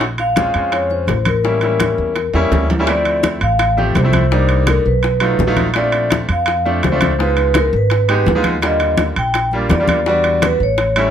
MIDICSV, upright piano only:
0, 0, Header, 1, 2, 480
1, 0, Start_track
1, 0, Tempo, 359281
1, 3, Time_signature, 4, 2, 24, 8
1, 14836, End_track
2, 0, Start_track
2, 0, Title_t, "Upright piano"
2, 0, Program_c, 0, 0
2, 494, Note_on_c, 0, 56, 61
2, 500, Note_on_c, 0, 60, 54
2, 501, Note_on_c, 0, 61, 61
2, 514, Note_on_c, 0, 65, 73
2, 657, Note_off_c, 0, 56, 0
2, 660, Note_off_c, 0, 60, 0
2, 661, Note_off_c, 0, 61, 0
2, 667, Note_off_c, 0, 65, 0
2, 736, Note_on_c, 0, 56, 60
2, 736, Note_on_c, 0, 60, 49
2, 745, Note_on_c, 0, 65, 62
2, 747, Note_on_c, 0, 61, 56
2, 1403, Note_off_c, 0, 56, 0
2, 1403, Note_off_c, 0, 60, 0
2, 1408, Note_off_c, 0, 61, 0
2, 1408, Note_off_c, 0, 65, 0
2, 1924, Note_on_c, 0, 55, 61
2, 1932, Note_on_c, 0, 58, 59
2, 1933, Note_on_c, 0, 61, 59
2, 1937, Note_on_c, 0, 64, 69
2, 2093, Note_off_c, 0, 55, 0
2, 2097, Note_off_c, 0, 58, 0
2, 2097, Note_off_c, 0, 61, 0
2, 2100, Note_off_c, 0, 64, 0
2, 2168, Note_on_c, 0, 55, 61
2, 2174, Note_on_c, 0, 58, 58
2, 2176, Note_on_c, 0, 61, 57
2, 2187, Note_on_c, 0, 64, 67
2, 2840, Note_off_c, 0, 55, 0
2, 2843, Note_off_c, 0, 58, 0
2, 2843, Note_off_c, 0, 61, 0
2, 2849, Note_off_c, 0, 64, 0
2, 3130, Note_on_c, 0, 58, 71
2, 3131, Note_on_c, 0, 55, 81
2, 3140, Note_on_c, 0, 61, 84
2, 3140, Note_on_c, 0, 64, 92
2, 3549, Note_off_c, 0, 55, 0
2, 3549, Note_off_c, 0, 58, 0
2, 3553, Note_off_c, 0, 61, 0
2, 3554, Note_off_c, 0, 64, 0
2, 3727, Note_on_c, 0, 55, 84
2, 3735, Note_on_c, 0, 58, 74
2, 3738, Note_on_c, 0, 61, 74
2, 3747, Note_on_c, 0, 64, 89
2, 3847, Note_off_c, 0, 55, 0
2, 3850, Note_off_c, 0, 64, 0
2, 3851, Note_off_c, 0, 58, 0
2, 3851, Note_on_c, 0, 53, 64
2, 3853, Note_off_c, 0, 61, 0
2, 3859, Note_on_c, 0, 57, 58
2, 3863, Note_on_c, 0, 60, 60
2, 3870, Note_on_c, 0, 64, 68
2, 4522, Note_off_c, 0, 53, 0
2, 4526, Note_off_c, 0, 57, 0
2, 4527, Note_off_c, 0, 60, 0
2, 4531, Note_off_c, 0, 64, 0
2, 5034, Note_on_c, 0, 53, 70
2, 5042, Note_on_c, 0, 57, 64
2, 5044, Note_on_c, 0, 60, 69
2, 5049, Note_on_c, 0, 67, 79
2, 5293, Note_off_c, 0, 53, 0
2, 5297, Note_off_c, 0, 57, 0
2, 5298, Note_off_c, 0, 60, 0
2, 5300, Note_off_c, 0, 67, 0
2, 5391, Note_on_c, 0, 53, 71
2, 5401, Note_on_c, 0, 57, 62
2, 5404, Note_on_c, 0, 60, 70
2, 5410, Note_on_c, 0, 64, 74
2, 5651, Note_off_c, 0, 53, 0
2, 5656, Note_off_c, 0, 57, 0
2, 5658, Note_off_c, 0, 60, 0
2, 5661, Note_off_c, 0, 64, 0
2, 5758, Note_on_c, 0, 55, 65
2, 5764, Note_on_c, 0, 58, 62
2, 5772, Note_on_c, 0, 62, 59
2, 5773, Note_on_c, 0, 63, 69
2, 6435, Note_off_c, 0, 55, 0
2, 6438, Note_off_c, 0, 58, 0
2, 6441, Note_off_c, 0, 62, 0
2, 6442, Note_off_c, 0, 63, 0
2, 6961, Note_on_c, 0, 54, 65
2, 6965, Note_on_c, 0, 57, 60
2, 6974, Note_on_c, 0, 63, 63
2, 6976, Note_on_c, 0, 65, 80
2, 7216, Note_off_c, 0, 54, 0
2, 7218, Note_off_c, 0, 57, 0
2, 7222, Note_off_c, 0, 63, 0
2, 7224, Note_off_c, 0, 65, 0
2, 7310, Note_on_c, 0, 54, 88
2, 7313, Note_on_c, 0, 57, 73
2, 7316, Note_on_c, 0, 63, 82
2, 7324, Note_on_c, 0, 65, 91
2, 7570, Note_off_c, 0, 54, 0
2, 7572, Note_off_c, 0, 57, 0
2, 7573, Note_off_c, 0, 63, 0
2, 7577, Note_off_c, 0, 65, 0
2, 7680, Note_on_c, 0, 57, 67
2, 7691, Note_on_c, 0, 60, 58
2, 7693, Note_on_c, 0, 62, 58
2, 7702, Note_on_c, 0, 65, 78
2, 8355, Note_off_c, 0, 57, 0
2, 8361, Note_off_c, 0, 60, 0
2, 8362, Note_off_c, 0, 62, 0
2, 8366, Note_off_c, 0, 65, 0
2, 8890, Note_on_c, 0, 57, 75
2, 8897, Note_on_c, 0, 60, 66
2, 8899, Note_on_c, 0, 62, 64
2, 8901, Note_on_c, 0, 65, 72
2, 9140, Note_off_c, 0, 57, 0
2, 9143, Note_off_c, 0, 60, 0
2, 9145, Note_off_c, 0, 62, 0
2, 9146, Note_off_c, 0, 65, 0
2, 9242, Note_on_c, 0, 57, 75
2, 9248, Note_on_c, 0, 60, 66
2, 9249, Note_on_c, 0, 62, 61
2, 9254, Note_on_c, 0, 65, 80
2, 9496, Note_off_c, 0, 57, 0
2, 9499, Note_off_c, 0, 60, 0
2, 9499, Note_off_c, 0, 62, 0
2, 9502, Note_off_c, 0, 65, 0
2, 9600, Note_on_c, 0, 56, 67
2, 9604, Note_on_c, 0, 59, 55
2, 9609, Note_on_c, 0, 63, 57
2, 9618, Note_on_c, 0, 65, 79
2, 10275, Note_off_c, 0, 56, 0
2, 10276, Note_off_c, 0, 59, 0
2, 10279, Note_off_c, 0, 63, 0
2, 10283, Note_off_c, 0, 65, 0
2, 10799, Note_on_c, 0, 56, 68
2, 10810, Note_on_c, 0, 59, 62
2, 10816, Note_on_c, 0, 67, 80
2, 10817, Note_on_c, 0, 63, 68
2, 11054, Note_off_c, 0, 56, 0
2, 11059, Note_off_c, 0, 59, 0
2, 11062, Note_off_c, 0, 67, 0
2, 11063, Note_off_c, 0, 63, 0
2, 11158, Note_on_c, 0, 56, 82
2, 11163, Note_on_c, 0, 59, 72
2, 11166, Note_on_c, 0, 63, 72
2, 11170, Note_on_c, 0, 65, 90
2, 11413, Note_off_c, 0, 56, 0
2, 11415, Note_off_c, 0, 59, 0
2, 11417, Note_off_c, 0, 63, 0
2, 11419, Note_off_c, 0, 65, 0
2, 11515, Note_on_c, 0, 55, 66
2, 11518, Note_on_c, 0, 58, 62
2, 11522, Note_on_c, 0, 50, 59
2, 11530, Note_on_c, 0, 65, 71
2, 12191, Note_off_c, 0, 55, 0
2, 12193, Note_off_c, 0, 58, 0
2, 12194, Note_off_c, 0, 50, 0
2, 12198, Note_off_c, 0, 65, 0
2, 12734, Note_on_c, 0, 55, 75
2, 12734, Note_on_c, 0, 58, 63
2, 12740, Note_on_c, 0, 62, 67
2, 12746, Note_on_c, 0, 65, 76
2, 12980, Note_off_c, 0, 55, 0
2, 12980, Note_off_c, 0, 58, 0
2, 12983, Note_off_c, 0, 62, 0
2, 12986, Note_off_c, 0, 65, 0
2, 13086, Note_on_c, 0, 55, 68
2, 13094, Note_on_c, 0, 58, 63
2, 13100, Note_on_c, 0, 62, 62
2, 13100, Note_on_c, 0, 65, 80
2, 13336, Note_off_c, 0, 55, 0
2, 13340, Note_off_c, 0, 58, 0
2, 13343, Note_off_c, 0, 62, 0
2, 13343, Note_off_c, 0, 65, 0
2, 13445, Note_on_c, 0, 55, 72
2, 13455, Note_on_c, 0, 59, 56
2, 13461, Note_on_c, 0, 62, 61
2, 13461, Note_on_c, 0, 66, 75
2, 14115, Note_off_c, 0, 55, 0
2, 14120, Note_off_c, 0, 59, 0
2, 14122, Note_off_c, 0, 62, 0
2, 14122, Note_off_c, 0, 66, 0
2, 14654, Note_on_c, 0, 55, 72
2, 14655, Note_on_c, 0, 57, 64
2, 14661, Note_on_c, 0, 61, 62
2, 14670, Note_on_c, 0, 64, 82
2, 14836, Note_off_c, 0, 55, 0
2, 14836, Note_off_c, 0, 57, 0
2, 14836, Note_off_c, 0, 61, 0
2, 14836, Note_off_c, 0, 64, 0
2, 14836, End_track
0, 0, End_of_file